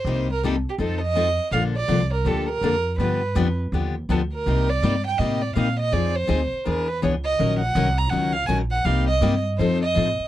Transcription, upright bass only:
X:1
M:4/4
L:1/8
Q:"Swing" 1/4=164
K:Bb
V:1 name="Upright bass" clef=bass
C,,4 F,,4 | B,,,2 C,,2 D,,2 F,,2 | G,,2 F,,2 E,,2 D,,2 | C,,2 G,,2 A,,2 B,,2 |
F,,2 D,, z =E,,2 ^C,,2 | B,,,2 C,,2 _D,,2 B,,,2 | C,,2 G,,2 F,,2 A,, z |]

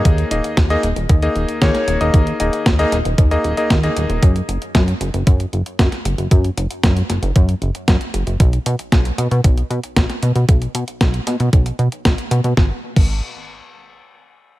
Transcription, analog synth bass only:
X:1
M:4/4
L:1/16
Q:1/4=115
K:D#phr
V:1 name="Analog synth bass" clef=bass
D,, z D,,, z D,, z D,,, D,,, D,, z D,,, z D,, z D,,, D,,, | D,, z D,,, z D,, z D,,, D,,, D,, z D,,, z D,, z D,,, D,,, | F,, z F,,, z F,, z F,,, F,,, F,, z F,,, z F,, z F,,, F,,, | F,, z F,,, z F,, z F,,, F,,, F,, z F,,, z F,, z F,,, F,,, |
B,,, z B,, z B,,, z B,, B,, B,,, z B,, z B,,, z B,, B,, | B,,, z B,, z B,,, z B,, B,, B,,, z B,, z B,,, z B,, B,, | G,,, z2 G,,,2 z8 z3 |]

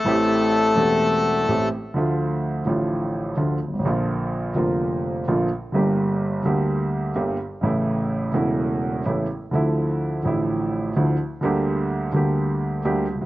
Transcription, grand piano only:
X:1
M:4/4
L:1/16
Q:1/4=127
K:Am
V:1 name="Grand piano" clef=bass
[A,,,A,,E,A,CG]6 [E,,,E,,E,A,CG]6 [A,,,A,,E,A,CG]2 z2 | [K:Dm] [D,,D,F,A,F]6 [A,,,A,,D,F,A,F]6 [D,,D,F,A,F]2 z/2 G,,,/2 ^G,,,/2 A,,,/2 | [B,,,B,,D,F,B,F]6 [F,,,F,,D,F,B,F]6 [B,,,B,,D,F,B,F]2 z2 | [G,,,G,,D,G,B,G]6 [D,,D,G,B,G]6 [G,,,G,,D,G,B,G]2 z2 |
[A,,,A,,^C,E,A,E]6 [E,,,E,,C,E,A,E]6 [A,,,A,,C,E,A,E]2 z2 | [D,,D,F,A,E]6 [A,,,A,,D,F,A,E]6 [D,,D,F,A,E]2 z2 | [D,,D,G,B,G]6 [D,,D,G,B,G]6 [D,,D,G,B,G]2 z/2 ^C,,/2 D,,/2 z/2 |]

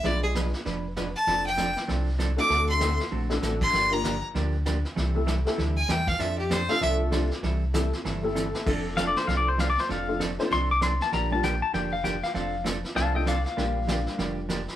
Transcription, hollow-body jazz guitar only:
X:1
M:4/4
L:1/8
Q:"Swing" 1/4=195
K:F
V:1 name="Hollow-body jazz guitar"
[=B,,F,=B,D^G=B] z [B,,F,B,DGB] z [B,,F,B,DGB] z [B,,F,B,DGB] z | [F,CDA] z [F,CDA] z [F,CDA] z [F,CDA] z | [D,A,C^FA] z [D,A,CFA] z [D,A,CFA] z [D,A,CFA] z | [D,F,B,DG] z [D,F,B,DG] z [D,F,B,DG] z [D,F,B,DG] z |
[C,E,G,CEA] z [C,E,G,CEA] z [C,E,G,CEA] z [C,E,G,CEA] z | [F,CDA] z [F,CDA] z [F,CDA] z [F,CDA] z | [C,E,G,CEA] z [C,E,G,CEA] z [C,E,G,CEA] z [C,E,G,CEA] z | [F,CDA] z [F,CDA] z [F,CDA] z [F,CDA] z |
[F,CDA] z [F,CDA] z [F,CDA] z [F,CDA] z | [D,F,B,DG] z [D,F,B,DG] z [D,F,B,DG] z [D,F,B,DG] z | [F,CDA] z [F,CDA] z [F,CDA] z [F,CDA] z | [D,F,B,DG] z [D,F,B,DG] z [D,F,B,DG] z [D,F,B,DG] z |]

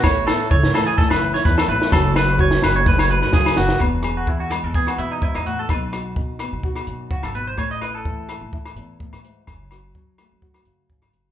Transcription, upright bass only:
X:1
M:4/4
L:1/16
Q:"Swing 16ths" 1/4=127
K:E
V:1 name="Upright bass" clef=bass
A,,,2 z2 C,, A,,2 z2 F,,,2 z E,, z A,,, z | F,,,6 F,,,4- F,,, F,,2 z F,,, z | E,,,4 E,,3 E,,3 E,,2 z E,,3 | B,,,4 B,,3 B,,3 B,,2 z G,,,3 |
A,,,4 A,,3 A,,3 A,,2 z A,,3 | F,,,4 F,,3 F,,3 F,,2 G,,,2 F,,,2 |]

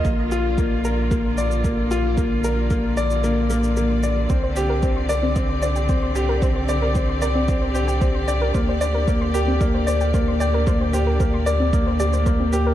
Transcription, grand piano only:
X:1
M:4/4
L:1/8
Q:1/4=113
K:Bbmix
V:1 name="Grand piano"
B, F B, B B, d B, F | B, B B, d B, B, B, d | C G C d C d C G | C d C d C G C d |
B, d B, G B, d B, d | B, G B, d B, d B, G |]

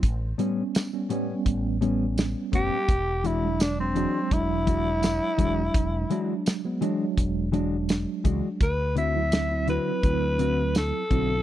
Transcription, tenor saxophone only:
X:1
M:4/4
L:1/16
Q:"Swing 16ths" 1/4=84
K:Edor
V:1 name="Tenor saxophone"
z12 z2 G2- | G2 E2 D =C3 E8- | E4 z12 | B2 e4 B6 A4 |]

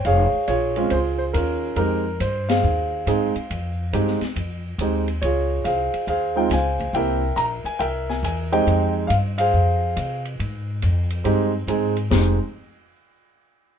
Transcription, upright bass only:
X:1
M:4/4
L:1/8
Q:"Swing" 1/4=139
K:Fm
V:1 name="Upright bass" clef=bass
F,,, z B,,,2 D,,2 E,,2 | F,,2 G,,2 E,,2 A,, z | F,,2 G,, z F,,2 E,,2 | D,,2 C,, z E,,2 D,,2 |
C,,2 B,,, z C,,2 =E,,2 | F,,2 G,,2 F,,2 C,2 | A,,2 F,,2 G,,2 A,,2 | F,,, z6 z |]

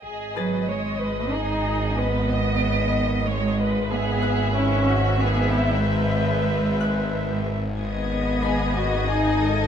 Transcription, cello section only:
X:1
M:3/4
L:1/8
Q:1/4=93
K:G#phr
V:1 name="Cello section"
z F, G,2 D2 | B,4 G,2 | B,2 C2 B,2 | G,4- G, z |
B,4 D2 |]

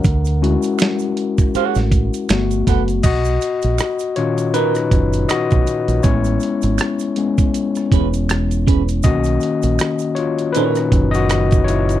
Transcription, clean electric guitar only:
X:1
M:4/4
L:1/16
Q:"Swing 16ths" 1/4=80
K:Blyd
V:1 name="Clean electric guitar"
z8 [Gcf] z4 z [=ABf]2 | z8 [DAc]2 z6 | z8 z2 [CGB]2 z2 [CGB]2 | z8 [DAc] z6 z |]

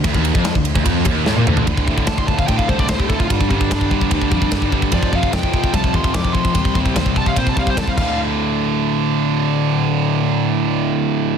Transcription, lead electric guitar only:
X:1
M:4/4
L:1/16
Q:1/4=148
K:Dphr
V:1 name="Lead electric guitar"
z16 | z4 a c' a f g f c d c G A F | z D D12 z2 | d2 f2 g4 a2 c'2 d'2 c'2- |
c'2 z4 a f c a f c a f f2 | z16 | z16 |]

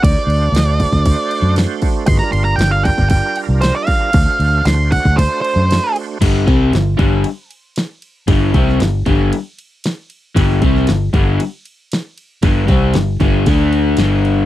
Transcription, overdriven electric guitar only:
X:1
M:4/4
L:1/8
Q:1/4=116
K:Gm
V:1 name="Overdriven electric guitar" clef=bass
z8 | z8 | z8 | [G,,D,G,] [C,G,C] [G,,D,] [G,,D,G,] z4 |
[G,,D,G,] [C,G,C] [G,,D,] [G,,D,G,] z4 | [G,,D,G,] [C,G,C] [G,,D,] [G,,D,G,] z4 | [G,,D,G,] [C,G,C] [G,,D,] [G,,D,G,] [D,A,D]2 [G,,D,G,]2 |]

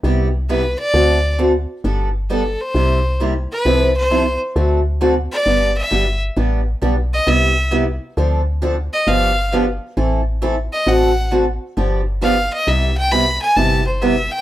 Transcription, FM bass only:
X:1
M:4/4
L:1/8
Q:"Swing" 1/4=133
K:C
V:1 name="FM bass" clef=bass
C,,4 D,,4 | G,,,4 C,,4 | C,,4 D,,4 | G,,,2 G,,,2 A,,,2 B,,,2 |
C,,4 D,,4 | G,,,4 A,,,4 | A,,,4 G,,,4 | C,,4 G,,,4 |]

